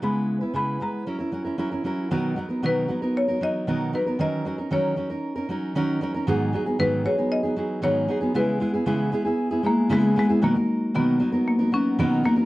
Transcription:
X:1
M:4/4
L:1/16
Q:1/4=116
K:B
V:1 name="Marimba"
b4 b2 a8 z2 | z4 B4 c2 d4 B2 | d4 c8- c2 z2 | z4 B2 c2 d4 c4 |
B8- B2 A,2 G,2 G,2 | A,4 B,4 A,2 C2 B,2 A,2 |]
V:2 name="Steel-string acoustic guitar"
[C,G,B,EB]3 [B,EB] [C,G,B,EB]2 [G,B,EB]2 [F,CEA] [CEA] [F,CEA] [CEA] [F,CEA] [CEA] [F,CEA]2 | [B,,D,F,B,DA]2 [F,B,DA] [F,B,DA] [B,,D,F,B,DA]2 [F,B,DA] [F,B,DA]2 [F,B,DA] [F,B,DA]2 [B,,D,F,B,DA]2 [F,B,DA] [F,B,DA] | [D,F,CDA]2 [F,CDA] [CDA] [D,F,CDA]2 [F,CDA] [CDA]2 [CDA] [F,CDA]2 [D,F,CDA]2 [F,CDA] [CDA] | [G,,D,F,B,DG]2 [F,B,DG] [F,B,DG] [G,,D,F,B,DG]2 [F,B,DG] [F,B,DG]2 [F,B,DG] [F,B,DG]2 [G,,D,F,B,DG]2 [F,B,DG] [F,B,DG] |
[C,G,B,EG]2 [G,B,EG] [B,EG] [C,G,B,EG]2 [G,B,EG] [B,EG]2 [B,EG] [G,B,EG]2 [C,G,B,EG]2 [G,B,EG] [B,EG] | [B,,D,F,B,DA] [F,DA]3 [B,,D,F,B,DA]2 [F,B,DA] [F,B,DA]2 [F,B,DA] [F,B,DA]2 [B,,D,F,B,DA]2 [F,B,DA] [F,B,DA] |]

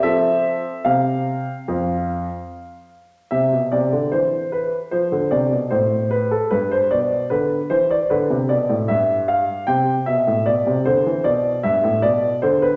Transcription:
X:1
M:4/4
L:1/16
Q:1/4=76
K:F
V:1 name="Grand piano"
e4 f8- f2 z2 | [K:C] e2 d2 c2 B2 c2 d2 c2 B A | B c d2 B2 c d B2 d2 e2 f2 | g2 e2 d2 c2 d2 e2 d2 c B |]
V:2 name="Grand piano" clef=bass
[F,CA]4 C,4 F,,4 z4 | [K:C] C, B,, C, D, E,4 F, D, C, B,, A,,4 | G,,2 B,,2 D,2 E,2 D, C, B,, A,, G,,4 | C,2 B,, A,, B,, C, D, E, B,,2 G,, A,, B,,2 D,2 |]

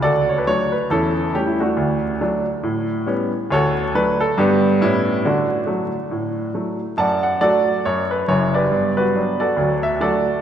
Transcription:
X:1
M:4/4
L:1/16
Q:"Swing" 1/4=138
K:D
V:1 name="Grand piano"
[FAd]2 c B c2 B2 [CEA]4 G E [A,DF]2- | [A,DF]12- [A,DF]2 z2 | [FAc]4 B2 A2 [B,DG]4 [B,CE]4 | [A,DF]12- [A,DF]2 z2 |
[dfa]2 f2 [FAd]4 c2 B2 c2 [GBd]2- | [GBd]2 [FGB]4 [FAd]4 e2 [FAd]4 |]
V:2 name="Grand piano" clef=bass
D,,4 [F,A,D]4 E,,4 [G,A,C]4 | D,,4 [F,A,D]4 A,,4 [G,B,C]4 | D,,4 [F,A,D]4 [G,,G,]4 [A,,G,]4 | D,4 [F,A,]4 A,,4 [F,A,]4 |
F,,4 [F,A,D]4 F,,4 [F,,,F,,]4 | [G,,B,]4 [F,B,D]4 [D,,F,]4 [F,A,D]4 |]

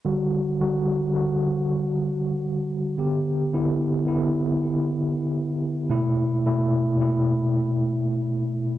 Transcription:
X:1
M:4/4
L:1/16
Q:1/4=82
K:Dmix
V:1 name="Tine electric piano"
[D,G,F]3 [D,G,F]3 [D,G,F]8- [D,G,F]2 | [D,B,G]3 [D,B,E] z2 [D,B,E]8- [D,B,E]2 | [B,,A,E]3 [B,,A,E]3 [B,,A,E]8- [B,,A,E]2 |]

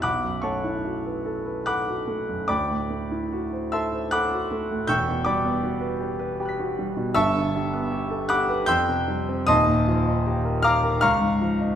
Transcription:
X:1
M:3/4
L:1/16
Q:1/4=77
K:Bm
V:1 name="Grand piano"
[fbd'f']2 [cfac']4 z2 [fbd'f']4 | [dgbd']6 [ea=c'e']2 [fbd'f']4 | [gc'e'g']2 [dgbd']4 z2 [gbf'b']4 | [eac'e']6 [fbd'f']2 [g=c'e'g']4 |
[^da=c'^d']6 [^e^a=d'^e']2 [ea^c'e']4 |]
V:2 name="Grand piano"
B,,, F,, A, E F B A B A F A, F,, | D,, A,, A, E F =c A c A F A, A,, | [E,,,E,,] B,, G, B, F B G B G F G, B,, | [G,,,G,,] D, G, B, G A G B =F,, =C, G, =C |
[^D,,,^D,,] ^A,, ^E, ^D G ^A ^E A C,, ^G,, E, D |]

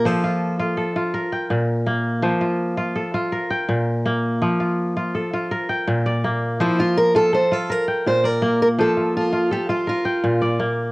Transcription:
X:1
M:12/8
L:1/8
Q:3/8=110
K:F
V:1 name="Steel-string acoustic guitar"
A3 z8 z | z12 | z12 | E F B A c A B2 c B2 B |
A2 F2 G F F4 z2 |]
V:2 name="Kora"
c F3 A2 B g3 z2 | c F3 A2 B g3 z2 | z F3 A2 B g2 d3 | c F3 A2 B g2 d3 |
c F3 A2 B g2 d3 |]
V:3 name="Kora"
F,2 z F2 F z2 B,,2 B,2 | F,2 z F2 F z2 B,,2 B,2 | F,2 z F2 F z2 B,,2 B,2 | F,2 z F2 F z2 B,,2 B,2 |
F,2 z F2 F z2 B,,2 B,2 |]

